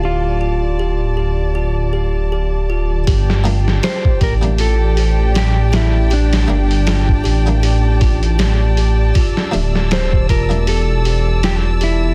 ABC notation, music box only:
X:1
M:4/4
L:1/16
Q:"Swing 16ths" 1/4=79
K:Gdor
V:1 name="Music box"
G2 F2 G z G2 F2 G z G2 F2 | G2 F2 G z G2 F2 G z G2 G2 | G z G2 F2 G z G2 F2 G z G2 | F2 G z G2 F2 G z G2 F2 G z |]